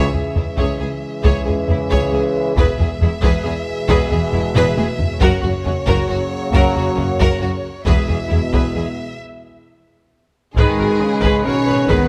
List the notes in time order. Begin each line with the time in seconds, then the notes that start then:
Already playing: C#2 C#3 E3 G#3 G#4 C#5 E5
0.13 C#2 G#4, taiko low
0.35 C#2 E4 G#4, taiko low
0.57 C#2 G#4 C#5, taiko
0.80 C#2 G#4
1.23 C#2 G#4 C#5, taiko
1.45 C#2 G#4, taiko low
1.68 C#2 E4 G#4, taiko low
1.90 C#2 G#4 C#5, taiko
2.12 C#2 G#4
2.55 E1 E2 B2 E3 G#3 G#4 B4 E5, taiko
2.79 E1 E2 G#4, taiko low
3.01 E1 E2 E4 G#4, taiko low
3.22 E1 E2 G#4 B4, taiko
3.45 E1 E2 G#4
3.88 E1 E2 G#4 B4, taiko
4.11 E1 E2 G#4, taiko low
4.33 E1 E2 E4 G#4, taiko low
4.55 E1 E2 G#4 B4, taiko low-mid
4.77 E1 E2 G#4, taiko high
4.99 taiko low
5.20 F#1 F#2 C#3 F#3 A#3 F#4 A#4 C#5, taiko
5.42 F#1 F#2 F#4, taiko low
5.65 F#1 F#2 C#4 F#4, taiko low
5.86 F#1 F#2 F#4 A#4, taiko
6.09 F#1 F#2 F#4
6.52 F#1 F#2 F#4 A#4, taiko
6.74 F#1 F#2 F#4, taiko low
6.96 F#1 F#2 C#4 F#4, taiko low
7.20 F#1 F#2 F#4 A#4, taiko
7.42 F#1 F#2 F#4
7.86 E1 E2 B2 G#3 B3 E4 G#4 B4 E5, taiko
8.08 E1 E2 G#4, taiko low
8.29 E1 E2 E4 G#4, taiko low
8.52 E1 E2 G#4 B4, taiko
8.75 E1 E2 G#4
10.56 G#1 D#3 G#3 G#4 B4, taiko
10.78 G#1 F#4 A#4
11.01 C#3
11.22 G#1 G#4 B4, taiko
11.45 G#1 B2 C#4 F#4 A#4 C#5
11.67 G#1 G#4 B4
11.89 G#1 D#3 B3 G#4 B4, taiko